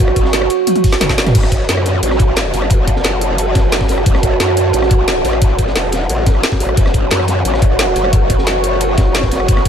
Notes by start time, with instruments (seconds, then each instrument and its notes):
Already playing: ambient pad F#4 C#5 F#5 C#6
0.00 wobble bass G1, ride
0.08 cross-stick
0.16 kick, closed hi-hat, ride
0.25 snare
0.33 snare, closed hi-hat, ride
0.42 cross-stick
0.50 closed hi-hat, ride
0.67 closed hi-hat, high tom, ride
0.76 closed hi-hat, high tom
0.84 kick, closed hi-hat, open hi-hat
0.93 cross-stick, snare, closed hi-hat
1.00 wobble bass F#1, snare, closed hi-hat, mid tom, ride
1.09 kick, snare
1.18 snare, open hi-hat, ride
1.26 cross-stick, snare, closed hi-hat, mid tom, ride
1.35 wobble bass F#1, ambient pad F#4 C#5 F#5 A5, kick, closed hi-hat, crash, ride
1.43 cross-stick, snare
1.52 kick, closed hi-hat, ride
1.69 wobble bass F#2, snare, closed hi-hat, ride
1.77 cross-stick
1.86 snare, closed hi-hat, ride
2.03 wobble bass A1, closed hi-hat, ride
2.11 cross-stick, snare
2.19 kick, closed hi-hat, ride
2.36 snare, closed hi-hat, ride
2.45 ride
2.53 wobble bass F#1, snare, open hi-hat, ride
2.62 cross-stick, ride
2.70 kick, closed hi-hat, ride
2.87 kick, closed hi-hat, ride
2.96 snare
3.04 snare, closed hi-hat, ride
3.21 closed hi-hat, ride
3.38 closed hi-hat, ride
3.55 kick, snare, closed hi-hat, ride
3.72 snare, closed hi-hat, ride
3.81 kick, snare, ride
3.88 wobble bass F#1, snare, open hi-hat, ride
3.98 cross-stick
4.06 wobble bass F#1, kick, closed hi-hat, ride
4.15 cross-stick, snare
4.23 kick, closed hi-hat, ride
4.40 wobble bass F#2, snare, closed hi-hat, ride
4.49 cross-stick
4.57 closed hi-hat, ride
4.73 wobble bass A1, closed hi-hat, ride
4.82 cross-stick, snare
4.91 kick, closed hi-hat, ride
5.08 snare, closed hi-hat, ride
5.16 ride
5.25 wobble bass A1, snare, open hi-hat, ride
5.33 cross-stick, ride
5.42 kick, closed hi-hat, ride
5.59 kick, closed hi-hat, ride
5.67 snare
5.76 wobble bass E1, snare, closed hi-hat, ride
5.92 snare, closed hi-hat, ride
6.09 wobble bass A1, closed hi-hat, ride
6.26 kick, snare, closed hi-hat, ride
6.35 cross-stick
6.43 snare, closed hi-hat, ride
6.52 kick, snare, ride
6.60 wobble bass A1, open hi-hat, ride
6.69 cross-stick
6.77 wobble bass F#1, ambient pad C#6, kick, closed hi-hat, ride
6.86 cross-stick, snare
6.94 kick, closed hi-hat, ride
7.10 wobble bass F#2, snare, closed hi-hat, ride
7.20 cross-stick
7.27 snare, closed hi-hat, ride
7.45 wobble bass A1, closed hi-hat, ride
7.54 cross-stick, snare
7.62 kick, closed hi-hat, ride
7.79 snare, closed hi-hat, ride
7.88 ride
7.95 wobble bass F#1, snare, open hi-hat, ride
8.04 cross-stick, ride
8.13 kick, closed hi-hat, ride
8.30 kick, closed hi-hat, ride
8.38 snare
8.47 snare, closed hi-hat, ride
8.64 closed hi-hat, ride
8.81 closed hi-hat, ride
8.97 kick, snare, closed hi-hat, ride
9.14 snare, closed hi-hat, ride
9.22 kick, snare, ride
9.31 wobble bass F#1, snare, open hi-hat, ride
9.40 cross-stick
9.48 wobble bass F#1, kick, closed hi-hat, ride
9.57 cross-stick, snare
9.65 kick, closed hi-hat